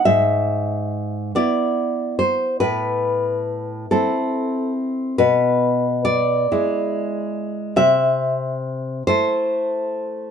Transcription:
\new Staff \with { instrumentName = "Nylon-string guitar" } { \time 6/8 \key a \minor \tempo 4. = 47 << { e''4. d''4 c''8 | b'4. a'4 r8 | b'4 d''2 | e''4. c''4. | } \\ { gis,4. <b e'>4. | a,4. <c' e'>4. | b,4. <gis e'>4. | c4. <a e'>4. | } >> }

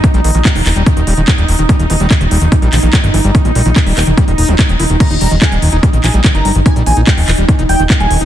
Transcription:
<<
  \new Staff \with { instrumentName = "Analog synth lead" } { \time 4/4 \key ees \major \tempo 4 = 145 r1 | r1 | r1 | bes''16 r16 bes''16 r16 aes''16 r4 r16 aes''16 r8 bes''16 r8 |
aes''16 r16 aes''16 r16 g''16 r4 r16 g''16 r8 aes''16 r8 | }
  \new Staff \with { instrumentName = "Synth texture" } { \time 4/4 \key ees \major ees'1~ | ees'1~ | ees'1 | ees'1~ |
ees'1 | }
  \new Staff \with { instrumentName = "Acid bass" } { \clef bass \time 4/4 \key ees \major fes16 g16 ees16 ees16 g16 ees16 fes16 g16 ees16 ees16 g16 ees16 fes16 g16 ees16 ees16 | g16 ees16 fes16 g16 ees16 ees16 g16 ees16 fes16 g16 ees16 ees16 g16 ees16 fes16 g16 | ees16 ees16 g16 ees16 fes16 g16 ees16 ees16 g16 ees16 ees'16 fes16 ees16 ees16 fes'16 ees16 | ees16 ees'16 g16 ees16 fes16 g16 ees16 ees'16 g16 ees16 fes16 g16 ees16 ees'16 g16 ees16 |
fes16 g16 ees16 ees'16 g16 ees16 fes16 g16 ees16 ees'16 g16 ees16 fes16 g16 ees16 ees'16 | }
  \new Staff \with { instrumentName = "Analog synth bass" } { \clef bass \time 4/4 \key ees \major r16 bes,,16 bes,,16 bes,,16 r16 ees,,16 ees,,16 ees,,16 r16 ees,,16 ees,,16 ees,,16 r16 ees,,16 ees,,16 ees,,16 | r16 ees,,16 ees,,16 ees,,16 r16 ees,,16 ees,,16 ees,,16 r16 bes,,16 bes,,16 bes,,16 r16 g,,16 g,,16 g,,16 | r16 bes,,16 bes,,16 bes,,16 r16 ees,,16 ees,,16 ees,,16 r16 ees,,16 ees,,16 ees,,16 r16 ees,,16 ees,,16 ees,,16 | r16 ees,,16 ees,,16 ees,,16 r16 ees,,16 ees,,16 ees,,16 r16 bes,,16 bes,,16 bes,,16 r16 g,,16 g,,16 g,,16 |
r16 bes,,16 bes,,16 bes,,16 r16 ees,,16 ees,,16 ees,,16 r16 ees,,16 ees,,16 ees,,16 r16 ees,,16 ees,,16 ees,,16 | }
  \new DrumStaff \with { instrumentName = "Drums" } \drummode { \time 4/4 <hh bd>16 hh16 hho16 hh16 <hc hh bd>16 hho16 <hc hho>16 hh16 <hh bd>16 hh16 hho16 hh16 <hc hh bd>16 hh16 hho16 hh16 | <hh bd>16 hh16 hho16 hh16 <hc hh bd>16 hh16 hho16 hh16 <hh bd>16 hh16 <hc hho>16 hh16 <hc hh bd>16 hh16 hho16 hh16 | <hh bd>16 hh16 hho16 hh16 <hc hh bd>16 hho16 <hc hho>16 hh16 <hh bd>16 hh16 hho16 hh16 <hc hh bd>16 hh16 hho16 hh16 | <cymc hh bd>16 hh16 hho16 hh16 <hc hh bd>16 hh16 hho16 hh16 <hh bd>16 hh16 <hc hho>16 hh16 <hc hh bd>16 hh16 hho16 hh16 |
<hh bd>16 hh16 hho16 hh16 <hc hh bd>16 hho16 <hc hho>16 hh16 <hh bd>16 hh16 hho16 hh16 <hc hh bd>16 hh16 hho16 hh16 | }
>>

